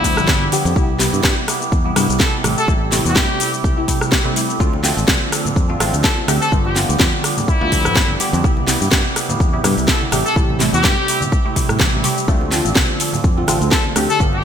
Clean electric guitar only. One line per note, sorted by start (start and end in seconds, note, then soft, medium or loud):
0.03 0.26 F3 medium
0.03 0.27 B3 medium
0.03 0.27 D4 medium
0.03 0.28 G4 medium
0.27 0.50 F3 medium
0.27 0.51 B3 medium
0.27 0.51 D4 medium
0.27 0.52 G4 loud
0.51 0.65 F3 medium
0.51 0.65 B3 medium
0.51 0.64 D4 medium
0.51 0.63 G4 medium
0.64 0.75 B3 medium
0.64 0.76 D4 medium
0.64 0.76 G4 medium
0.76 1.13 G3 loud
0.76 1.13 B3 medium
0.76 1.12 E4 loud
0.76 1.11 G4 loud
1.12 1.23 B3 medium
1.12 1.23 E4 medium
1.12 1.24 G4 medium
1.24 1.46 G3 medium
1.24 1.47 B3 loud
1.47 1.61 G3 medium
1.47 1.61 B3 medium
1.47 1.60 E4 medium
1.47 1.59 G4 medium
1.60 1.85 B3 medium
1.60 1.84 E4 medium
1.60 1.83 G4 medium
1.84 1.95 B3 medium
1.84 1.96 E4 medium
1.84 1.96 G4 medium
1.95 2.19 G3 medium
1.95 2.19 B3 medium
1.95 2.20 E4 medium
1.95 2.20 G4 medium
2.20 2.42 G3 medium
2.20 2.44 B3 loud
2.20 2.44 E4 medium
2.43 2.57 G3 medium
2.43 2.57 C4 medium
2.43 2.57 E4 medium
2.43 2.55 G4 medium
2.57 2.67 C4 medium
2.57 2.67 E4 medium
2.57 2.68 G4 medium
2.68 3.05 G3 medium
2.68 3.05 C4 medium
2.68 3.04 E4 medium
2.68 3.03 G4 loud
3.04 3.15 C4 soft
3.04 3.15 E4 medium
3.04 3.16 G4 medium
3.15 3.38 G3 loud
3.15 3.39 C4 loud
3.15 3.39 E4 loud
3.39 3.53 G3 medium
3.39 3.53 C4 medium
3.39 3.52 E4 medium
3.39 3.51 G4 medium
3.52 3.77 C4 medium
3.52 3.76 E4 medium
3.52 3.75 G4 medium
3.77 3.87 C4 medium
3.77 3.88 E4 medium
3.77 3.88 G4 medium
3.88 4.11 G3 medium
3.88 4.11 C4 medium
3.88 4.12 E4 medium
3.88 4.12 G4 medium
4.12 4.34 G3 medium
4.12 4.35 C4 medium
4.12 4.36 E4 loud
4.12 4.36 G4 loud
4.35 4.49 G3 medium
4.35 4.49 C4 medium
4.35 4.49 E4 medium
4.35 4.47 G4 medium
4.49 4.59 C4 soft
4.49 4.60 E4 medium
4.49 4.60 G4 medium
4.60 4.97 F3 medium
4.60 4.97 C4 medium
4.60 4.96 D4 loud
4.60 4.95 A4 medium
4.96 5.07 C4 soft
4.96 5.07 D4 medium
4.96 5.08 A4 medium
5.07 5.30 F3 medium
5.07 5.31 C4 medium
5.07 5.32 D4 loud
5.07 5.32 A4 loud
5.31 5.45 F3 medium
5.31 5.45 C4 medium
5.31 5.44 D4 medium
5.31 5.43 A4 medium
5.44 5.69 C4 medium
5.44 5.68 D4 medium
5.44 5.67 A4 medium
5.68 5.79 C4 medium
5.68 5.79 D4 medium
5.68 5.80 A4 medium
5.79 6.02 F3 medium
5.79 6.03 C4 medium
5.79 6.03 D4 medium
5.79 6.04 A4 medium
6.03 6.26 F3 medium
6.03 6.27 C4 medium
6.03 6.28 D4 loud
6.03 6.28 A4 loud
6.27 6.41 F3 medium
6.27 6.41 C4 medium
6.27 6.40 D4 medium
6.27 6.39 A4 medium
6.40 6.52 C4 soft
6.40 6.51 D4 medium
6.40 6.52 A4 medium
6.52 6.89 F3 loud
6.52 6.89 B3 medium
6.52 6.88 D4 loud
6.52 6.87 G4 loud
6.88 6.99 B3 medium
6.88 6.99 D4 medium
6.88 7.00 G4 medium
6.99 7.22 F3 medium
6.99 7.24 D4 loud
7.23 7.37 F3 medium
7.23 7.37 B3 medium
7.23 7.36 D4 medium
7.23 7.35 G4 medium
7.37 7.61 B3 medium
7.37 7.60 D4 medium
7.37 7.59 G4 medium
7.61 7.71 B3 soft
7.61 7.72 D4 medium
7.61 7.72 G4 medium
7.71 7.94 F3 medium
7.71 7.95 B3 medium
7.71 7.95 D4 medium
7.71 7.96 G4 medium
7.96 8.18 F3 loud
7.96 8.19 B3 medium
7.96 8.20 D4 loud
7.96 8.20 G4 medium
8.20 8.33 F3 medium
8.20 8.33 B3 medium
8.20 8.32 D4 medium
8.20 8.31 G4 medium
8.33 8.43 B3 medium
8.33 8.44 D4 medium
8.33 8.44 G4 medium
8.44 8.81 G3 medium
8.44 8.81 B3 loud
8.44 8.81 E4 medium
8.44 8.79 G4 loud
8.81 8.91 B3 medium
8.81 8.92 E4 medium
8.81 8.92 G4 medium
8.92 9.14 G3 medium
8.92 9.15 B3 loud
8.92 9.16 E4 medium
9.15 9.29 G3 medium
9.15 9.29 B3 medium
9.15 9.29 E4 medium
9.15 9.27 G4 medium
9.29 9.53 B3 medium
9.29 9.53 E4 medium
9.29 9.51 G4 medium
9.53 9.63 B3 medium
9.53 9.64 E4 medium
9.53 9.64 G4 medium
9.63 9.86 G3 medium
9.63 9.87 B3 medium
9.63 9.87 E4 medium
9.63 9.88 G4 medium
9.88 10.10 G3 medium
9.88 10.12 B3 medium
9.88 10.12 E4 loud
9.88 10.12 G4 loud
10.12 10.25 G3 medium
10.12 10.25 C4 medium
10.12 10.25 E4 medium
10.12 10.23 G4 medium
10.25 10.35 C4 medium
10.25 10.36 E4 medium
10.25 10.36 G4 medium
10.36 10.73 G3 medium
10.36 10.73 C4 loud
10.36 10.72 E4 loud
10.36 10.71 G4 medium
10.72 10.83 C4 medium
10.72 10.83 E4 medium
10.72 10.84 G4 medium
10.84 11.06 G3 medium
10.84 11.07 C4 loud
10.84 11.07 E4 loud
11.07 11.21 G3 medium
11.07 11.21 C4 medium
11.07 11.20 E4 medium
11.07 11.19 G4 medium
11.20 11.45 C4 medium
11.20 11.44 E4 medium
11.20 11.43 G4 medium
11.44 11.55 C4 soft
11.44 11.56 E4 medium
11.44 11.56 G4 medium
11.55 11.78 G3 medium
11.55 11.79 C4 medium
11.55 11.79 E4 medium
11.55 11.80 G4 medium
11.79 12.02 G3 medium
11.79 12.03 C4 medium
11.79 12.04 E4 medium
11.79 12.04 G4 loud
12.03 12.17 G3 medium
12.03 12.17 C4 medium
12.03 12.16 E4 medium
12.03 12.15 G4 medium
12.16 12.27 C4 medium
12.16 12.28 E4 medium
12.16 12.28 G4 medium
12.27 12.65 F3 medium
12.27 12.65 C4 medium
12.27 12.64 D4 medium
12.27 12.63 A4 loud
12.64 12.75 C4 soft
12.64 12.75 D4 medium
12.64 12.76 A4 medium
12.76 12.98 F3 medium
13.00 13.13 F3 medium
13.00 13.13 C4 medium
13.00 13.12 D4 medium
13.00 13.11 A4 medium
13.13 13.37 C4 soft
13.13 13.37 D4 medium
13.13 13.36 A4 medium
13.37 13.47 C4 medium
13.37 13.48 D4 medium
13.37 13.48 A4 medium
13.48 13.71 F3 medium
13.48 13.71 C4 medium
13.48 13.72 D4 medium
13.48 13.72 A4 medium
13.72 13.94 F3 medium
13.72 13.95 C4 loud
13.96 14.09 F3 medium
13.96 14.09 C4 medium
13.96 14.09 D4 medium
13.96 14.07 A4 medium
14.09 14.20 C4 soft
14.09 14.20 D4 medium
14.09 14.20 A4 medium
14.20 14.44 F3 medium
14.20 14.44 B3 loud
14.20 14.44 D4 loud
14.20 14.44 G4 loud